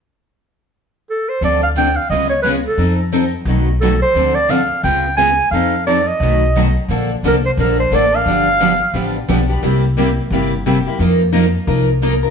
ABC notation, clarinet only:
X:1
M:4/4
L:1/8
Q:"Swing" 1/4=175
K:Bb
V:1 name="Clarinet"
z6 A c | d f g f e _d _c A- | A z4 z A c- | c d f2 g2 _a2 |
f2 d e4 z | z2 B c B c d f- | f4- f z3 | z8 |
z8 |]